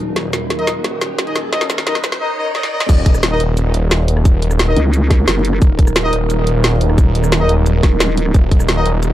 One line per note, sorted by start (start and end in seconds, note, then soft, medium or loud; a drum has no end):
0.00 0.15 D#1 loud
0.00 2.17 F#3 medium
0.00 0.13 D#4 medium
0.00 2.17 A#4 medium
0.00 riser medium
0.16 1.00 D#1 loud
0.16 2.19 C#4 medium
0.16 snare medium
0.16 closed hi-hat medium
0.33 snare medium
0.33 closed hi-hat medium
0.33 shaker medium
0.50 snare medium
0.50 closed hi-hat medium
0.59 0.70 D#4 medium
0.59 0.70 A#4 medium
0.59 0.70 D#5 loud
0.59 closed hi-hat soft
0.67 snare medium
0.67 closed hi-hat medium
0.67 shaker medium
0.84 snare medium
0.84 closed hi-hat medium
1.01 1.85 D#1 loud
1.01 snare medium
1.01 closed hi-hat medium
1.01 shaker medium
1.18 snare medium
1.18 closed hi-hat medium
1.27 1.38 D#4 medium
1.27 1.38 A#4 medium
1.27 1.38 D#5 loud
1.27 closed hi-hat soft
1.36 snare medium
1.36 closed hi-hat medium
1.36 shaker medium
1.53 1.64 D#4 medium
1.53 1.64 A#4 medium
1.53 1.64 D#5 loud
1.53 snare medium
1.53 closed hi-hat medium
1.61 snare medium
1.61 shaker soft
1.70 snare medium
1.70 closed hi-hat medium
1.70 shaker medium
1.78 snare medium
1.78 shaker soft
1.87 2.19 D#1 loud
1.87 1.98 D#4 loud
1.87 1.98 A#4 medium
1.87 1.98 D#5 loud
1.87 snare medium
1.87 closed hi-hat medium
1.95 snare medium
1.95 closed hi-hat soft
2.04 snare loud
2.04 closed hi-hat medium
2.04 shaker medium
2.12 snare medium
2.21 2.32 D#4 loud
2.21 2.32 A#4 medium
2.21 2.32 D#5 loud
2.21 swell medium
2.38 2.49 D#4 loud
2.38 2.49 A#4 medium
2.38 2.49 D#5 loud
2.55 2.66 D#4 loud
2.55 2.66 A#4 medium
2.55 2.66 D#5 loud
2.55 snare medium
2.63 snare medium
2.72 2.83 D#4 loud
2.72 2.83 A#4 loud
2.72 2.83 D#5 loud
2.80 snare medium
2.89 3.39 D#1 loud
2.89 9.13 F#3 medium
2.89 9.13 D#4 medium
2.89 8.32 A#4 medium
2.89 kick loud
2.89 closed hi-hat medium
2.89 crash loud
2.89 shaker medium
3.06 kick loud
3.06 closed hi-hat loud
3.15 cross-stick soft
3.15 shaker medium
3.23 snare loud
3.23 closed hi-hat medium
3.23 shaker soft
3.31 3.42 D#4 loud
3.31 3.42 A#4 medium
3.31 3.42 D#5 loud
3.40 4.75 D#1 medium
3.40 closed hi-hat loud
3.57 closed hi-hat medium
3.57 shaker soft
3.74 closed hi-hat loud
3.91 snare loud
3.91 closed hi-hat medium
3.91 shaker medium
4.08 closed hi-hat loud
4.17 cross-stick soft
4.25 kick loud
4.25 closed hi-hat medium
4.25 shaker soft
4.42 closed hi-hat medium
4.51 cross-stick soft
4.51 shaker medium
4.59 snare loud
4.59 closed hi-hat medium
4.59 shaker soft
4.68 4.79 D#4 loud
4.68 4.79 A#4 medium
4.68 4.79 D#5 loud
4.76 5.26 C#2 loud
4.76 closed hi-hat medium
4.93 closed hi-hat medium
4.93 shaker soft
5.11 kick loud
5.11 snare soft
5.11 closed hi-hat loud
5.28 5.60 F#1 loud
5.28 snare loud
5.28 closed hi-hat medium
5.28 shaker soft
5.45 closed hi-hat loud
5.53 cross-stick soft
5.62 6.11 D#1 loud
5.62 kick loud
5.62 closed hi-hat medium
5.62 shaker soft
5.79 kick loud
5.79 closed hi-hat medium
5.87 cross-stick soft
5.87 shaker medium
5.96 snare loud
5.96 closed hi-hat medium
5.96 shaker soft
6.04 6.15 D#4 loud
6.04 6.15 A#4 medium
6.04 6.15 D#5 loud
6.13 7.48 D#1 medium
6.13 closed hi-hat medium
6.30 closed hi-hat medium
6.30 shaker soft
6.47 closed hi-hat medium
6.64 snare loud
6.64 closed hi-hat medium
6.64 shaker soft
6.81 closed hi-hat medium
6.90 cross-stick soft
6.98 kick loud
6.98 closed hi-hat medium
6.98 shaker soft
7.15 closed hi-hat medium
7.24 cross-stick soft
7.24 shaker medium
7.32 snare loud
7.32 closed hi-hat medium
7.32 shaker soft
7.41 7.52 D#4 loud
7.41 7.52 A#4 medium
7.41 7.52 D#5 loud
7.49 7.82 D#1 medium
7.49 closed hi-hat medium
7.66 closed hi-hat medium
7.66 shaker soft
7.83 8.33 D#1 loud
7.83 kick loud
7.83 snare soft
7.83 closed hi-hat medium
8.00 snare loud
8.00 closed hi-hat medium
8.00 shaker soft
8.17 closed hi-hat medium
8.26 cross-stick soft
8.34 8.84 D#1 loud
8.34 9.13 F#4 medium
8.34 kick loud
8.34 closed hi-hat medium
8.34 shaker medium
8.51 kick loud
8.51 closed hi-hat medium
8.60 cross-stick soft
8.60 shaker medium
8.69 snare loud
8.69 closed hi-hat medium
8.69 shaker soft
8.77 8.88 D#4 medium
8.77 8.88 A#4 medium
8.77 8.88 D#5 loud
8.86 9.13 D#1 medium
8.86 closed hi-hat medium
9.03 closed hi-hat medium
9.03 shaker medium